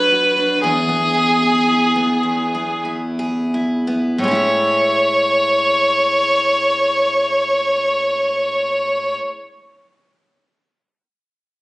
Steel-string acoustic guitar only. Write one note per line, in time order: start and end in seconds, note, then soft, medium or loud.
0.00 0.72 F#3 medium
0.00 0.36 D4 soft
0.00 0.11 F#4 soft
0.00 0.72 C#5 soft
0.12 0.72 F#4 soft
0.37 0.73 D4 soft
0.64 2.22 E2 medium
0.89 1.94 B3 soft
1.14 1.67 E4 soft
1.42 3.19 G#4 soft
1.68 2.84 E4 soft
1.95 2.53 B3 soft
2.23 4.38 E2 soft
2.54 3.86 B3 soft
2.85 3.54 E4 soft
3.19 4.35 G#4 soft
3.54 4.31 E4 soft
3.87 4.27 B3 soft
4.18 9.16 A2 medium
4.24 9.21 G#3 soft
4.28 9.25 C#4 soft
4.28 9.29 E4 medium
4.35 9.33 G#4 medium